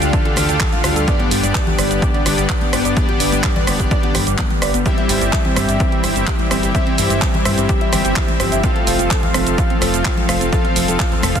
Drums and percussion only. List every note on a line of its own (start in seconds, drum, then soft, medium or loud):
0.02 closed hi-hat medium
0.02 shaker soft
0.13 kick loud
0.13 closed hi-hat medium
0.13 shaker soft
0.25 closed hi-hat soft
0.25 high bongo medium
0.36 cross-stick medium
0.36 open hi-hat loud
0.36 high conga medium
0.36 low conga medium
0.36 shaker medium
0.49 closed hi-hat medium
0.49 shaker soft
0.60 kick loud
0.60 clap loud
0.60 closed hi-hat medium
0.60 low conga loud
0.60 shaker soft
0.73 closed hi-hat soft
0.73 high conga medium
0.84 cross-stick medium
0.84 open hi-hat loud
0.84 shaker medium
0.96 closed hi-hat medium
0.96 shaker soft
1.08 kick loud
1.08 closed hi-hat medium
1.08 high conga medium
1.08 shaker soft
1.20 closed hi-hat soft
1.20 high bongo medium
1.31 open hi-hat loud
1.31 shaker medium
1.44 closed hi-hat medium
1.44 high conga medium
1.44 shaker soft
1.55 kick loud
1.55 clap loud
1.55 closed hi-hat medium
1.67 closed hi-hat soft
1.67 low conga loud
1.79 cross-stick medium
1.79 open hi-hat loud
1.79 high conga medium
1.79 shaker medium
1.91 closed hi-hat medium
1.91 shaker soft
2.02 kick loud
2.02 closed hi-hat medium
2.02 shaker soft
2.14 closed hi-hat soft
2.26 cross-stick medium
2.26 open hi-hat loud
2.26 high bongo medium
2.26 high conga medium
2.26 shaker medium
2.38 closed hi-hat medium
2.38 shaker soft
2.49 kick loud
2.49 clap loud
2.49 closed hi-hat medium
2.49 shaker soft
2.61 closed hi-hat soft
2.61 high conga medium
2.73 cross-stick medium
2.73 open hi-hat loud
2.73 high bongo medium
2.73 shaker medium
2.85 closed hi-hat medium
2.85 shaker soft
2.97 kick loud
2.97 closed hi-hat medium
2.97 high conga medium
2.97 shaker soft
3.09 closed hi-hat soft
3.09 high bongo medium
3.20 open hi-hat loud
3.20 shaker medium
3.32 closed hi-hat soft
3.32 high conga medium
3.32 shaker soft
3.44 kick loud
3.44 clap loud
3.44 closed hi-hat medium
3.44 shaker soft
3.56 closed hi-hat soft
3.56 low conga loud
3.67 cross-stick medium
3.67 open hi-hat loud
3.67 high conga medium
3.67 shaker medium
3.80 kick medium
3.80 closed hi-hat medium
3.80 shaker soft
3.91 kick loud
3.91 closed hi-hat medium
3.91 shaker soft
4.03 closed hi-hat soft
4.03 high bongo medium
4.15 cross-stick medium
4.15 open hi-hat loud
4.15 high conga medium
4.15 low conga medium
4.15 shaker medium
4.27 closed hi-hat medium
4.27 shaker soft
4.38 kick loud
4.38 clap loud
4.38 closed hi-hat medium
4.38 low conga loud
4.38 shaker soft
4.50 closed hi-hat soft
4.50 high conga medium
4.62 cross-stick medium
4.62 open hi-hat loud
4.62 shaker medium
4.74 closed hi-hat soft
4.74 shaker soft
4.86 kick loud
4.86 closed hi-hat medium
4.86 high conga medium
4.86 shaker soft
4.98 closed hi-hat soft
4.98 high bongo medium
5.09 open hi-hat loud
5.09 shaker medium
5.21 closed hi-hat medium
5.21 high conga medium
5.21 shaker soft
5.33 kick loud
5.33 clap loud
5.33 closed hi-hat medium
5.45 closed hi-hat soft
5.45 low conga medium
5.56 cross-stick medium
5.56 open hi-hat loud
5.56 high conga medium
5.56 shaker medium
5.69 closed hi-hat medium
5.69 shaker soft
5.80 kick loud
5.80 closed hi-hat medium
5.80 shaker soft
5.92 closed hi-hat soft
6.04 cross-stick medium
6.04 open hi-hat loud
6.04 high bongo medium
6.04 high conga medium
6.04 shaker medium
6.16 closed hi-hat soft
6.16 shaker soft
6.27 kick loud
6.27 clap loud
6.27 closed hi-hat medium
6.27 shaker soft
6.39 closed hi-hat soft
6.39 high conga loud
6.51 cross-stick medium
6.51 open hi-hat loud
6.51 high bongo medium
6.51 shaker medium
6.63 closed hi-hat soft
6.63 shaker soft
6.75 kick loud
6.75 closed hi-hat medium
6.75 high conga medium
6.75 shaker soft
6.87 closed hi-hat soft
6.98 open hi-hat loud
6.98 shaker medium
7.10 closed hi-hat medium
7.10 high conga medium
7.10 shaker soft
7.22 kick loud
7.22 clap loud
7.22 closed hi-hat medium
7.22 shaker soft
7.34 closed hi-hat soft
7.34 low conga loud
7.45 cross-stick medium
7.45 open hi-hat loud
7.45 high conga loud
7.45 shaker medium
7.58 closed hi-hat medium
7.58 shaker soft
7.69 kick loud
7.69 closed hi-hat medium
7.69 shaker soft
7.81 closed hi-hat soft
7.81 high bongo medium
7.92 cross-stick medium
7.92 open hi-hat loud
7.92 high conga medium
7.92 low conga medium
7.92 shaker medium
8.05 closed hi-hat medium
8.05 shaker soft
8.16 kick loud
8.16 clap loud
8.16 closed hi-hat medium
8.16 low conga medium
8.28 closed hi-hat soft
8.28 high conga medium
8.40 cross-stick medium
8.40 open hi-hat loud
8.40 shaker medium
8.52 closed hi-hat medium
8.52 shaker soft
8.63 kick loud
8.63 closed hi-hat medium
8.63 high conga medium
8.63 shaker soft
8.76 closed hi-hat soft
8.76 high bongo medium
8.87 open hi-hat loud
8.87 shaker medium
8.98 closed hi-hat medium
8.98 high conga medium
8.98 shaker soft
9.11 kick loud
9.11 clap loud
9.11 closed hi-hat medium
9.11 shaker soft
9.23 closed hi-hat soft
9.23 low conga loud
9.34 cross-stick medium
9.34 open hi-hat loud
9.34 high conga loud
9.34 shaker medium
9.47 closed hi-hat medium
9.47 shaker medium
9.58 kick loud
9.58 closed hi-hat medium
9.58 shaker soft
9.70 closed hi-hat soft
9.81 cross-stick medium
9.81 open hi-hat loud
9.81 high bongo medium
9.81 high conga medium
9.81 shaker medium
9.94 closed hi-hat medium
9.94 shaker soft
10.05 kick loud
10.05 clap loud
10.05 closed hi-hat medium
10.05 shaker soft
10.17 closed hi-hat soft
10.17 high conga medium
10.29 cross-stick medium
10.29 open hi-hat loud
10.29 high bongo medium
10.29 shaker medium
10.41 closed hi-hat medium
10.41 shaker soft
10.53 kick loud
10.53 closed hi-hat medium
10.53 high conga medium
10.53 shaker soft
10.65 closed hi-hat soft
10.65 high bongo medium
10.76 open hi-hat loud
10.76 shaker medium
10.88 closed hi-hat medium
10.88 high conga medium
10.88 shaker soft
11.00 kick loud
11.00 clap loud
11.00 closed hi-hat medium
11.12 closed hi-hat soft
11.12 low conga medium
11.23 cross-stick medium
11.23 open hi-hat loud
11.23 high conga medium
11.23 shaker medium
11.35 kick medium
11.35 closed hi-hat medium
11.35 shaker soft